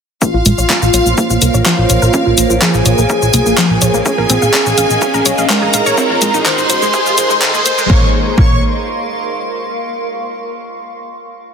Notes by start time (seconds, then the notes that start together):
0.22 A#3 F4 A#4 C5 C#5 F5, kick, riser, shaker
0.34 A#1 F4
0.46 A#1 G#3 F5, closed hi-hat, shaker
0.58 A#1 C#5, shaker
0.70 A#3, kick, clap, shaker
0.82 A#1 A#3, shaker
0.94 A#1 C#5, closed hi-hat, shaker
1.06 A#1, shaker
1.18 A#3, kick, shaker
1.30 A#1 F4, shaker
1.42 C2 A#4, closed hi-hat, shaker
1.54 A#1 C#5, shaker
1.66 F3 F4 F5, kick, clap, shaker
1.78 A#1 F4
1.90 A#1 C#5, closed hi-hat, shaker
2.02 A#1 A#4, shaker
2.14 C#4, kick, shaker
2.26 A#1 F4
2.38 A#1 A#3, closed hi-hat, shaker
2.50 A#1 F4, shaker
2.62 F3 G#4 G#5, kick, clap, shaker
2.74 A#1 F4, shaker
2.86 A#1 C#5, closed hi-hat, shaker
2.98 A#1 A#3, shaker
3.10 A#4, kick, shaker
3.22 A#1 F4, shaker
3.34 C2 A#3, closed hi-hat, shaker
3.46 A#1 A#3, shaker
3.58 F3, kick, clap, shaker
3.70 A#1 A#4
3.82 A#1 C#5, closed hi-hat, shaker
3.94 A#1 A#3, shaker
4.06 C#4 G#4 D#5 F5 G#5, kick, shaker
4.18 A#1 G#4 A#4
4.29 A#1 C4 D#5, closed hi-hat, shaker
4.42 A#1 F5, shaker
4.54 C#4, kick, clap, shaker
4.66 A#1 C#4, shaker
4.78 A#1 F5, closed hi-hat, shaker
4.90 A#1, shaker
5.02 C#4, kick, shaker
5.14 A#1 A#4, shaker
5.26 C2 C#5, closed hi-hat, shaker
5.38 A#1 F5, shaker
5.50 G#3 A#4 A#5, kick, clap, shaker
5.62 A#1 G#4
5.74 A#1 F5, closed hi-hat, shaker
5.86 A#1 C#5, shaker
5.98 G#3 C4 D#4 A#4 C5, kick, shaker
6.10 A#1 F4
6.22 A#1 G#3, closed hi-hat, shaker
6.30 A#1 D#4 C6, shaker
6.37 A#5
6.46 D#3 C5 C6, kick, clap, shaker
6.58 A#1 D#4, shaker
6.70 A#1 C5, closed hi-hat, shaker
6.82 A#1 G#3, shaker
6.94 G#4, kick, shaker
7.06 A#1 F4, shaker
7.18 A#1 G#3, closed hi-hat, shaker
7.30 A#1 G#3, shaker
7.42 D#3, kick, clap, shaker
7.54 A#2 G#4, shaker
7.66 A#2 C5, closed hi-hat, shaker
7.78 A#1 G#3, shaker
7.90 A#1 A#3 A#4 C#5 C#6, kick
7.97 F5
8.04 C6
8.11 C#6
8.38 A#1 A#3 C#5 C#6, kick